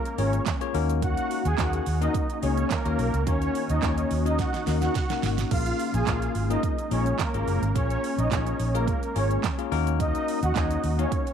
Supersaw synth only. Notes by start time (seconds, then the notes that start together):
0.18 C#4 C#5
1.02 F#4 F#5
1.46 G#4 G#5
1.59 F#4 F#5
2.02 D#4 D#5
2.43 C#4 C#5
2.71 A#3 A#4
3.27 C#4 C#5
3.70 D#4 D#5
3.82 C#4 C#5
4.26 D#4 D#5
4.38 F#4 F#5
4.82 F#4 F#5
5.51 F4 F5
5.94 G#4 G#5
6.07 F4 F5
6.50 D#4 D#5
6.91 C#4 C#5
7.19 A#3 A#4
7.75 C#4 C#5
8.18 D#4 D#5
8.31 C#4 C#5
8.74 A#3 A#4
9.16 C#4 C#5
10.00 D#4 D#5
10.43 F#4 F#5
10.56 D#4 D#5
10.99 C#4 C#5